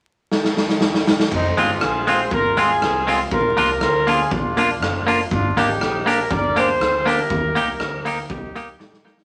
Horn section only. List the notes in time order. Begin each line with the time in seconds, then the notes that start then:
1.33 C4 D#4
1.59 D4 F4
1.83 F4 G#4
2.11 G#4 C5
2.33 F4 A#4
2.59 F4 G#4
3.08 F4 G#4
3.33 F4 A#4
3.59 G4 A#4
3.81 F4 A#4
4.08 F4 G#4
4.31 D4 F4
5.32 D4 F4
5.58 D#4 G4
6.08 G4 A#4
6.30 A#4 D5
6.57 G#4 C5
7.07 G4 A#4
8.06 G4 A#4
8.30 D#4 G4